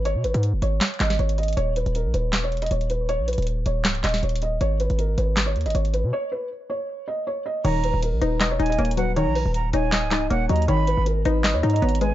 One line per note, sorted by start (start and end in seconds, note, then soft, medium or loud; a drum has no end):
0.00 0.17 G#1 loud
0.05 0.21 C#5 loud
0.05 closed hi-hat medium
0.15 0.26 B2 loud
0.24 0.34 G#1 loud
0.24 0.40 B4 medium
0.24 closed hi-hat medium
0.24 open hi-hat medium
0.34 0.55 G#2 loud
0.34 closed hi-hat medium
0.43 closed hi-hat medium
0.53 0.62 F#1 loud
0.62 0.80 G#1 loud
0.62 0.98 C#5 medium
0.62 closed hi-hat medium
0.81 snare loud
0.81 clap medium
0.81 closed hi-hat medium
0.88 closed hi-hat medium
0.94 closed hi-hat soft
1.00 1.18 G#1 loud
1.00 1.16 D#5 medium
1.00 snare loud
1.00 clap medium
1.00 closed hi-hat medium
1.10 snare medium
1.19 1.56 G#1 loud
1.19 1.35 C#5 medium
1.19 closed hi-hat soft
1.29 closed hi-hat medium
1.38 1.54 D#5 medium
1.38 closed hi-hat medium
1.43 closed hi-hat medium
1.48 closed hi-hat medium
1.53 closed hi-hat medium
1.57 1.85 D#1 loud
1.57 1.73 C#5 loud
1.57 closed hi-hat medium
1.76 1.92 B4 medium
1.76 closed hi-hat medium
1.86 2.07 D#1 loud
1.86 closed hi-hat soft
1.95 2.11 A#4 medium
1.95 closed hi-hat medium
2.05 2.13 A#1 loud
2.14 2.45 D#1 loud
2.14 2.41 B4 medium
2.14 closed hi-hat medium
2.33 snare loud
2.33 clap medium
2.33 closed hi-hat medium
2.43 2.70 E1 loud
2.43 2.59 C#5 medium
2.52 closed hi-hat soft
2.57 closed hi-hat soft
2.62 2.70 D#5 medium
2.62 closed hi-hat medium
2.66 closed hi-hat medium
2.71 3.20 D#1 loud
2.71 2.87 C#5 medium
2.71 closed hi-hat medium
2.81 closed hi-hat soft
2.90 3.06 B4 medium
2.90 closed hi-hat medium
3.09 3.25 C#5 loud
3.09 closed hi-hat medium
3.19 3.37 A#1 medium
3.28 3.44 B4 medium
3.28 closed hi-hat medium
3.28 open hi-hat medium
3.33 closed hi-hat medium
3.38 3.65 D#1 loud
3.38 closed hi-hat medium
3.42 closed hi-hat soft
3.47 closed hi-hat medium
3.66 3.86 D#1 loud
3.66 4.02 C#5 medium
3.66 closed hi-hat medium
3.85 4.03 C#1 loud
3.85 snare loud
3.85 clap medium
3.85 closed hi-hat medium
3.95 closed hi-hat medium
4.04 4.22 D#1 loud
4.04 4.19 D#5 medium
4.04 snare loud
4.04 clap medium
4.04 closed hi-hat medium
4.09 closed hi-hat medium
4.14 snare medium
4.14 closed hi-hat soft
4.18 closed hi-hat soft
4.23 4.59 D#1 loud
4.23 4.39 C#5 medium
4.23 closed hi-hat soft
4.29 closed hi-hat medium
4.36 closed hi-hat medium
4.42 4.58 D#5 medium
4.42 closed hi-hat medium
4.61 4.89 G#1 loud
4.61 4.77 C#5 medium
4.61 closed hi-hat medium
4.80 4.96 B4 medium
4.80 closed hi-hat medium
4.90 5.17 G#1 loud
4.90 closed hi-hat soft
4.98 5.14 A#4 medium
4.98 closed hi-hat medium
5.18 5.57 G#1 loud
5.18 5.45 B4 medium
5.18 closed hi-hat medium
5.37 snare loud
5.37 clap medium
5.37 closed hi-hat medium
5.46 5.62 C#5 medium
5.56 5.67 D#2 loud
5.56 closed hi-hat soft
5.61 closed hi-hat soft
5.66 5.74 G#1 loud
5.66 5.73 D#5 medium
5.66 closed hi-hat medium
5.70 closed hi-hat medium
5.75 6.05 G#1 loud
5.75 5.91 C#5 medium
5.75 closed hi-hat medium
5.85 closed hi-hat soft
5.94 6.09 B4 medium
5.94 closed hi-hat medium
6.04 6.12 B2 loud
6.13 6.29 C#5 loud
6.32 6.48 B4 medium
6.70 7.05 C#5 medium
7.08 7.23 D#5 medium
7.27 7.43 C#5 medium
7.46 7.61 D#5 medium
7.64 7.93 D#1 loud
7.64 8.60 D#3 medium
7.64 7.80 C#5 loud
7.64 8.00 A#5 loud
7.64 closed hi-hat medium
7.64 crash loud
7.84 8.00 B4 medium
7.84 closed hi-hat medium
7.94 8.14 D#1 loud
8.03 8.19 A#4 medium
8.03 closed hi-hat medium
8.13 8.21 A#1 loud
8.21 8.42 D#1 loud
8.21 8.58 D#4 medium
8.21 8.49 B4 medium
8.21 closed hi-hat medium
8.41 8.59 E1 loud
8.41 9.36 D#5 loud
8.41 snare loud
8.41 clap medium
8.41 closed hi-hat medium
8.51 8.67 C#5 medium
8.59 8.78 D#1 loud
8.59 9.54 D#4 medium
8.59 8.95 G#5 loud
8.59 closed hi-hat soft
8.66 8.77 D#5 medium
8.66 closed hi-hat medium
8.72 closed hi-hat medium
8.79 9.28 D#1 loud
8.79 9.74 A#3 loud
8.79 8.94 C#5 medium
8.79 closed hi-hat soft
8.85 closed hi-hat medium
8.91 closed hi-hat medium
8.97 9.92 F#3 medium
8.97 9.13 B4 medium
8.97 9.15 F#5 medium
8.97 closed hi-hat medium
9.16 10.12 D#3 loud
9.16 9.32 C#5 loud
9.16 9.52 A#5 loud
9.16 closed hi-hat medium
9.27 9.45 A#1 loud
9.35 9.51 B4 medium
9.35 open hi-hat medium
9.46 9.72 D#1 loud
9.54 9.73 A#5 medium
9.54 closed hi-hat medium
9.73 10.04 D#1 loud
9.73 10.10 D#4 medium
9.73 10.09 C#5 medium
9.73 10.27 G#5 medium
9.73 closed hi-hat medium
9.92 10.68 D#5 loud
9.92 snare loud
9.92 clap medium
9.92 closed hi-hat medium
10.02 10.29 C#1 loud
10.11 10.68 D#4 medium
10.11 10.27 D#5 medium
10.11 snare loud
10.11 clap medium
10.11 closed hi-hat medium
10.30 10.49 D#1 loud
10.30 10.68 A#3 medium
10.30 10.46 C#5 medium
10.30 10.49 F#5 medium
10.30 closed hi-hat medium
10.49 10.68 D#2 loud
10.49 10.68 F#3 medium
10.49 10.66 D#5 medium
10.49 10.67 A#5 medium
10.49 closed hi-hat medium
10.56 closed hi-hat medium
10.62 closed hi-hat medium
10.68 10.96 G#1 loud
10.68 11.63 D#3 loud
10.68 10.84 C#5 loud
10.68 11.04 B5 loud
10.68 closed hi-hat medium
10.87 11.03 B4 medium
10.87 closed hi-hat medium
10.97 11.24 G#1 loud
11.06 11.22 A#4 medium
11.06 closed hi-hat medium
11.25 11.56 G#1 loud
11.25 11.62 D#4 medium
11.25 11.53 B4 medium
11.25 closed hi-hat medium
11.44 12.14 D#5 loud
11.44 snare loud
11.44 clap medium
11.44 closed hi-hat medium
11.54 11.63 D#2 loud
11.54 11.70 C#5 medium
11.63 11.82 G#2 loud
11.63 12.14 D#4 medium
11.63 11.99 A#5 medium
11.63 closed hi-hat soft
11.70 11.81 D#5 medium
11.70 closed hi-hat medium
11.76 closed hi-hat medium
11.82 12.14 G#1 loud
11.82 12.14 B3 medium
11.82 11.98 C#5 medium
11.82 closed hi-hat soft
11.89 closed hi-hat medium
11.95 closed hi-hat medium
12.01 12.14 G#3 medium
12.01 12.14 B4 medium
12.01 12.14 G#5 medium
12.01 closed hi-hat medium